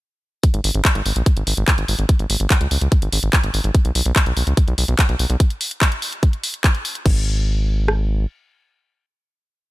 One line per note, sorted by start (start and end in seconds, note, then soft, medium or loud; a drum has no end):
0.43 kick loud
0.43 closed hi-hat loud
0.54 0.60 G#1 medium
0.54 closed hi-hat soft
0.64 0.71 G#1 loud
0.64 open hi-hat loud
0.75 0.81 G#1 loud
0.75 closed hi-hat soft
0.85 kick loud
0.85 clap loud
0.85 closed hi-hat loud
0.95 1.02 G#1 medium
0.95 closed hi-hat soft
1.06 1.12 G#1 loud
1.06 open hi-hat medium
1.16 1.22 A#1 medium
1.16 closed hi-hat soft
1.26 kick loud
1.26 closed hi-hat medium
1.37 1.43 G#1 medium
1.37 closed hi-hat soft
1.47 1.53 G#1 loud
1.47 open hi-hat loud
1.57 1.64 G#1 medium
1.57 closed hi-hat soft
1.68 kick loud
1.68 clap loud
1.68 closed hi-hat loud
1.78 1.84 G#1 medium
1.78 closed hi-hat soft
1.88 1.95 G#1 loud
1.88 open hi-hat medium
1.99 2.05 G#1 medium
1.99 closed hi-hat soft
2.09 kick loud
2.09 closed hi-hat medium
2.19 2.26 G#1 medium
2.19 closed hi-hat soft
2.30 2.36 G#1 loud
2.30 open hi-hat loud
2.40 2.46 G#1 medium
2.40 closed hi-hat soft
2.50 kick loud
2.50 clap loud
2.50 closed hi-hat medium
2.61 2.67 C#2 medium
2.61 closed hi-hat soft
2.71 2.77 C#2 loud
2.71 open hi-hat loud
2.81 2.88 C#2 medium
2.81 closed hi-hat soft
2.92 kick loud
2.92 closed hi-hat medium
3.02 3.08 G#1 medium
3.02 closed hi-hat soft
3.12 3.19 G#1 loud
3.12 open hi-hat loud
3.23 3.29 G#1 medium
3.23 closed hi-hat soft
3.33 kick loud
3.33 clap loud
3.33 closed hi-hat loud
3.44 3.50 G#1 medium
3.44 closed hi-hat soft
3.54 3.60 G#1 loud
3.54 open hi-hat loud
3.64 3.71 G#1 medium
3.64 closed hi-hat soft
3.75 kick loud
3.75 closed hi-hat medium
3.85 3.91 B1 medium
3.85 closed hi-hat soft
3.95 4.02 B1 loud
3.95 open hi-hat loud
4.06 4.12 B1 loud
4.06 closed hi-hat soft
4.16 kick loud
4.16 clap loud
4.16 closed hi-hat medium
4.26 4.33 B1 medium
4.26 closed hi-hat soft
4.37 4.43 B1 loud
4.37 open hi-hat loud
4.47 4.53 C#2 medium
4.47 closed hi-hat soft
4.57 kick loud
4.57 closed hi-hat medium
4.68 4.74 B1 medium
4.68 closed hi-hat soft
4.78 4.84 B1 loud
4.78 open hi-hat loud
4.88 4.95 B1 medium
4.88 closed hi-hat soft
4.99 kick loud
4.99 clap loud
4.99 closed hi-hat medium
5.09 5.15 B1 medium
5.09 closed hi-hat soft
5.19 5.26 B1 loud
5.19 open hi-hat loud
5.30 5.36 B1 medium
5.30 closed hi-hat soft
5.40 kick loud
5.40 closed hi-hat medium
5.50 closed hi-hat soft
5.61 open hi-hat loud
5.71 closed hi-hat soft
5.81 kick loud
5.81 clap loud
5.81 closed hi-hat medium
5.92 closed hi-hat soft
6.02 open hi-hat loud
6.13 closed hi-hat soft
6.23 kick loud
6.23 closed hi-hat medium
6.33 closed hi-hat soft
6.44 open hi-hat loud
6.54 closed hi-hat soft
6.64 kick loud
6.64 clap loud
6.64 closed hi-hat medium
6.75 closed hi-hat soft
6.85 open hi-hat loud
6.95 closed hi-hat soft
7.06 8.26 G#1 loud
7.06 kick loud
7.06 crash medium
7.88 cross-stick medium